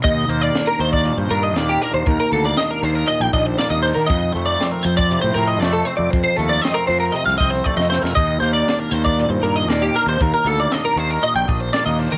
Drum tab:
HH |x-x-x-x-x-x-x-x-|x-x-x-o-x-x-x-o-|x-x-x-x-x-x-x-x-|x-x-x-o-x-x-----|
SD |----o-------o---|----o-------o---|----o-------o---|----o----o-o-ooo|
BD |o------o--------|o---------o-----|o------o--------|o---------o-o---|

HH |x-x-x-x-x-x-x-x-|x-x-x-o-x-x-x-o-|
SD |----o-------o---|----o-------o---|
BD |o------o--------|o---------o-----|